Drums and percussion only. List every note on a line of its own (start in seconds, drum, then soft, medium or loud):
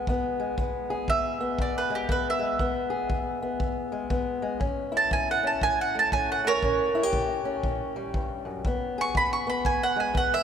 0.07 kick medium
0.58 kick medium
1.08 kick medium
1.59 kick medium
2.09 kick medium
2.59 kick medium
3.10 kick medium
3.60 kick medium
4.10 kick medium
4.61 kick medium
5.11 kick medium
5.61 kick medium
6.12 kick medium
6.63 kick medium
7.13 kick medium
7.63 kick medium
8.14 kick medium
8.65 kick medium
9.15 kick medium
9.65 kick medium
10.15 kick medium